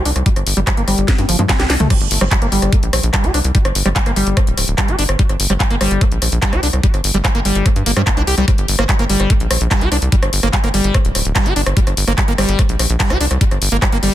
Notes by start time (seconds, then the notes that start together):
0.05 C2 D4, open hi-hat
0.16 C2, cross-stick, closed hi-hat
0.26 G3, kick, closed hi-hat
0.36 G1, cross-stick, closed hi-hat
0.47 G1, open hi-hat
0.57 G1 G3, closed hi-hat
0.67 G3, kick, cross-stick, clap, closed hi-hat
0.77 G1 A#3, closed hi-hat
0.88 G1 G3, cross-stick, open hi-hat
0.98 G1, closed hi-hat
1.08 A#3, kick, snare, closed hi-hat
1.18 G2, closed hi-hat, high tom
1.29 G1 F3, open hi-hat
1.39 G2 F3, closed hi-hat, mid tom
1.49 G3, kick, snare, clap, closed hi-hat
1.60 C2 G4, snare, closed hi-hat
1.70 C2 D4, snare, open hi-hat
1.80 C2 A3, closed hi-hat, mid tom
1.90 G3, kick, cross-stick, closed hi-hat, crash
2.01 G1, closed hi-hat
2.11 G1, open hi-hat
2.21 G1 G3, cross-stick
2.31 G3, kick, clap, closed hi-hat
2.42 G1 A#3, cross-stick, closed hi-hat
2.52 G1 G3, open hi-hat
2.62 G1, cross-stick, closed hi-hat
2.73 A#3, kick, closed hi-hat
2.83 A#1, closed hi-hat
2.93 A#1, cross-stick, open hi-hat
3.03 A#1, closed hi-hat
3.14 G3, kick, cross-stick, clap, closed hi-hat
3.24 C2 G4, closed hi-hat
3.34 C2 D4, cross-stick, open hi-hat
3.44 C2, closed hi-hat
3.55 G3, kick, closed hi-hat
3.65 G1, cross-stick, closed hi-hat
3.75 G1, open hi-hat
3.86 G1 G3, cross-stick, closed hi-hat
3.96 G3, kick, clap, closed hi-hat
4.06 G1 A#3, cross-stick, closed hi-hat
4.16 G1 G3, open hi-hat
4.27 G1, closed hi-hat
4.37 A#3, kick, cross-stick, closed hi-hat
4.47 D1, closed hi-hat
4.57 D1, cross-stick, open hi-hat
4.68 D1, closed hi-hat
4.78 G3, kick, cross-stick, clap, closed hi-hat
4.88 G1 G4, closed hi-hat
4.99 G1 D4, open hi-hat
5.09 G1, cross-stick, closed hi-hat
5.19 G3, kick, closed hi-hat
5.29 G1, cross-stick, closed hi-hat
5.40 G1, open hi-hat
5.50 G1 G3, cross-stick, closed hi-hat
5.60 G3, kick, clap, closed hi-hat
5.70 G1 A#3, closed hi-hat
5.81 G1 G3, cross-stick, open hi-hat
5.91 G1, closed hi-hat
6.01 A#3, kick, cross-stick, closed hi-hat
6.12 A#1, closed hi-hat
6.22 A#1, cross-stick, open hi-hat
6.32 A#1, closed hi-hat
6.42 G3, kick, clap, closed hi-hat
6.53 C2 G4, cross-stick, closed hi-hat
6.63 C2 D4, open hi-hat
6.73 C2, cross-stick, closed hi-hat
6.83 G3, kick, closed hi-hat
6.94 G1, cross-stick, closed hi-hat
7.04 G1, open hi-hat
7.14 G1 G3, closed hi-hat
7.25 G3, kick, cross-stick, clap, closed hi-hat
7.35 G1 A#3, closed hi-hat
7.45 G1 G3, open hi-hat
7.55 G1, closed hi-hat
7.66 A#3, kick, cross-stick, closed hi-hat
7.76 G2, closed hi-hat
7.86 G1 A#3, open hi-hat
7.96 G2 G3, cross-stick, closed hi-hat
8.07 A3, kick, clap, closed hi-hat
8.17 C2 D4, cross-stick, closed hi-hat
8.27 C2 G4, open hi-hat
8.38 C2 G3, cross-stick, closed hi-hat
8.48 G3, kick, cross-stick, closed hi-hat
8.58 G1, closed hi-hat
8.68 G1, open hi-hat
8.79 G1 A#3, cross-stick, closed hi-hat
8.89 G3, kick, clap, closed hi-hat
8.99 G1 A#3, cross-stick, closed hi-hat
9.10 G1 G3, open hi-hat
9.20 G1, cross-stick, closed hi-hat
9.30 A#3, kick, closed hi-hat
9.40 A#1, closed hi-hat
9.51 A#1, cross-stick, open hi-hat
9.61 A#1, closed hi-hat
9.71 G3, kick, cross-stick, clap, closed hi-hat
9.81 C2 G4, closed hi-hat
9.92 C2 D4, cross-stick, open hi-hat
10.02 C2, closed hi-hat
10.12 G3, kick, closed hi-hat
10.23 G1, cross-stick, closed hi-hat
10.33 G1, open hi-hat
10.43 G1 A#3, cross-stick, closed hi-hat
10.53 G3, kick, clap, closed hi-hat
10.64 G1 A#3, cross-stick, closed hi-hat
10.74 G1 G3, open hi-hat
10.84 G1, closed hi-hat
10.94 A#3, kick, cross-stick, closed hi-hat
11.05 D1, closed hi-hat
11.15 D1, cross-stick, open hi-hat
11.25 D1, closed hi-hat
11.36 G3, kick, cross-stick, clap, closed hi-hat
11.46 G1 G4, closed hi-hat
11.56 G1 D4, open hi-hat
11.66 G1, cross-stick, closed hi-hat
11.77 G3, kick, closed hi-hat
11.87 G1, cross-stick, closed hi-hat
11.97 G1, open hi-hat
12.07 G1 A#3, cross-stick, closed hi-hat
12.18 G3, kick, clap, closed hi-hat
12.28 G1 A#3, closed hi-hat
12.38 G1 G3, cross-stick, open hi-hat
12.49 G1, closed hi-hat
12.59 A#3, kick, cross-stick, closed hi-hat
12.69 A#1, closed hi-hat
12.79 A#1, cross-stick, open hi-hat
12.90 A#1, closed hi-hat
13.00 G3, kick, clap, closed hi-hat
13.10 C2 G4, cross-stick, closed hi-hat
13.20 C2 D4, open hi-hat
13.31 C2, cross-stick, closed hi-hat
13.41 G3, kick, closed hi-hat
13.51 G1, cross-stick, closed hi-hat
13.62 G1, open hi-hat
13.72 G1 A#3, closed hi-hat
13.82 G3, kick, cross-stick, clap, closed hi-hat
13.92 G1 A#3, closed hi-hat
14.03 G1 G3, open hi-hat